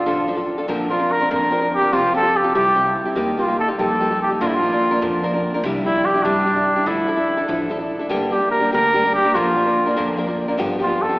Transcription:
Already playing: F4
0.05 A1 D3 F3 D4 F4 A4
0.27 F3 D4 F4 A4
0.36 D4 F4 A4
0.58 D4 F4 A4
0.68 A#1 A#2 D3 F3 C4 D4 A#4
0.89 F3 C4 D4 F4 A#4
0.99 F3 C4 D4 A#4
1.12 A#4
1.20 F3 C4 D4 A#4
1.30 F2 A#2 D3 F3 C4 D4 A#4
1.50 F3 C4 D4 A#4
1.61 F3 C4 D4 A#4
1.75 G4
1.81 F3 C4 D4 A#4
1.92 C2 C3 F3 C4 F4 G4
2.13 F3 C4 F4 G4 A4
2.22 C4 F4 G4
2.36 G4
2.44 C4 F4 G4
2.54 C2 C3 G3 C4 E4 G4
2.75 G3 C4 E4 G4
2.85 C4 E4 G4
3.05 C4 E4 G4
3.15 D#2 D#3 G3 A#3 D#4 G4
3.37 G3 A#3 D#4 F4 G4
3.47 A#3 D#4 G4
3.59 A4
3.68 A#3 D#4 G4
3.79 A#1 D#3 G3 A#3 D#4 G4 A4
4.00 G3 A#3 D#4 G4
4.11 A#3 D#4 G4
4.22 G4
4.30 A#3 D#4 G4
4.40 A#1 A#2 D3 F3 A#3 D4 F4 A#4
4.46 E4
4.54 F4
4.62 F3 A#3 D4 A#4
4.72 F3 A#3 D4 A#4
4.91 F3 A#3 D4 A#4
5.01 F2 A#2 D3 F3 A#3 D4 A#4
5.22 F3 A#3 D4 A#4
5.34 F3 A#3 D4 A#4
5.54 F3 A#3 D4 A#4
5.64 C2 C3 G3 D4 E4 G4
5.85 G3 D4 E4 G4
5.95 D4 E4 G4
6.05 G4
6.14 D4 E4 G4
6.23 G2 C3 G3 D4 E4 G4
6.45 G3 D4 E4 G4
6.55 D4 E4 G4
6.76 D4 E4 G4
6.86 D2 D3 F3 D4 E4 A4
7.07 F3 D4 E4 A4
7.17 D4 E4 A4
7.37 D4 E4 A4
7.48 A1 D3 F3 D4 E4 A4
7.69 F3 D4 E4 A4
7.79 D4 E4 A4
7.99 D4 E4 A4
8.09 G1 G2 D3 G3 A#3 D4 G4
8.31 G3 A#3 D4 G4
8.40 G3 A#3 D4 G4
8.50 A#4
8.60 G3 A#3 D4 G4
8.71 D2 G2 D3 G3 A#3 D4 G4 A#4
8.93 G3 A#3 D4 G4
9.05 G3 A#3 D4 G4
9.14 G4
9.23 G3 A#3 D4 G4
9.34 A#1 A#2 D3 F3 A#3 D4 F4 A#4
9.55 F3 A#3 D4 A#4
9.66 F3 A#3 D4 A#4
9.86 F3 A#3 D4 A#4
9.96 F2 A#2 D3 F3 A#3 D4 A#4
10.17 F3 A#3 D4 A#4
10.27 F3 A#3 D4 A#4
10.48 F3 A#3 D4 A#4
10.57 G1 G2 D3 F3 B3 F4 G4
10.78 F3 B3 F4 G4
10.82 F4
10.88 F3 B3 F4 G4
11.02 A4
11.09 F3 B3 F4 G4

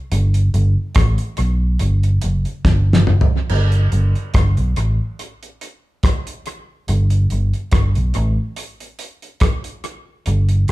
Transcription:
0.12 G1, closed hi-hat
0.34 closed hi-hat
0.54 G1, closed hi-hat
0.95 A1, kick, cross-stick, closed hi-hat
1.18 closed hi-hat
1.37 B1, closed hi-hat
1.79 G1, closed hi-hat
2.03 closed hi-hat
2.22 F#1, closed hi-hat
2.45 closed hi-hat
2.65 G1, kick, snare
2.93 snare
3.07 mid tom
3.21 floor tom
3.49 G1, crash
3.72 closed hi-hat
3.92 G1, closed hi-hat
4.15 closed hi-hat
4.34 G1, kick, cross-stick, closed hi-hat
4.57 B1, closed hi-hat
4.76 A1, closed hi-hat
5.19 closed hi-hat
5.43 closed hi-hat
5.61 closed hi-hat
6.03 kick, cross-stick, closed hi-hat
6.27 closed hi-hat
6.46 closed hi-hat
6.88 G1, closed hi-hat
7.10 closed hi-hat
7.30 G1, closed hi-hat
7.54 closed hi-hat
7.72 G1, kick, cross-stick, closed hi-hat
7.95 B1, closed hi-hat
8.14 A1, closed hi-hat
8.56 closed hi-hat
8.80 closed hi-hat
8.99 closed hi-hat
9.22 closed hi-hat
9.40 kick, cross-stick, closed hi-hat
9.64 closed hi-hat
9.84 closed hi-hat
10.26 G1, closed hi-hat
10.49 closed hi-hat
10.68 closed hi-hat

